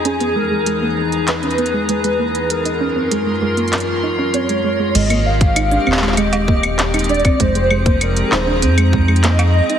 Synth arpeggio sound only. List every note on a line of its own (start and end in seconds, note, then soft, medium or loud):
0.05 0.18 C#4 medium
0.21 0.33 B3 medium
0.36 0.49 G#3 medium
0.51 0.56 G#3 medium
0.67 0.79 G#3 medium
0.82 0.87 A#3 medium
1.28 1.33 D#4 medium
1.43 1.56 C#4 medium
1.58 1.71 B3 medium
1.74 1.86 G#3 medium
1.89 1.94 G#3 medium
2.04 2.17 G#3 medium
2.19 2.25 A#3 medium
2.66 2.71 D#4 medium
2.81 2.94 C#4 medium
2.96 3.09 C4 medium
3.11 3.24 G#3 medium
3.27 3.32 G#3 medium
3.42 3.55 G#3 medium
3.57 3.62 A#3 medium
4.03 4.08 D#4 medium
4.18 4.31 C#4 medium
4.34 4.47 C4 medium
4.49 4.62 G#3 medium
4.64 4.69 G#3 medium
4.80 4.92 G#3 medium
4.95 5.08 G#3 medium
5.10 5.15 A#3 medium
5.56 5.61 D#4 medium
5.72 5.84 D4 medium
5.87 6.00 C4 medium
6.02 6.15 G#3 medium
6.18 6.23 G#3 medium
6.33 6.46 G#3 medium
6.48 6.53 A#3 medium
6.94 6.99 D#4 medium
7.09 7.22 D4 medium
7.25 7.37 C4 medium
7.40 7.53 G#3 medium
7.55 7.60 G#3 medium
7.71 7.83 G#3 medium
7.86 7.91 A#3 medium
8.32 8.37 D#4 medium
8.47 8.60 D4 medium
8.63 8.75 C4 medium
8.78 8.90 G#3 medium
8.93 8.98 G#3 medium
9.08 9.21 G#3 medium
9.24 9.29 A#3 medium
9.70 9.75 D#4 medium